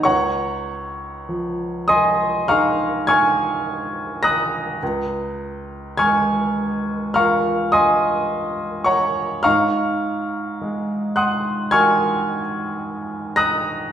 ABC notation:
X:1
M:4/4
L:1/8
Q:1/4=52
K:Db
V:1 name="Grand piano"
[dgbd']3 [eac'e'] [fbd'f'] [ad'f'a']2 [be'g'b']- | [be'g'b']2 [ad'f'a']2 [fbd'f'] [eac'e']2 [dgbd'] | [fbd'f']3 [gc'e'g'] [ad'f'a']3 [be'g'b'] |]
V:2 name="Grand piano"
D,,2 F,2 [EA]4 | D,,2 A,2 [FB]4 | A,,2 A,2 [GB]4 |]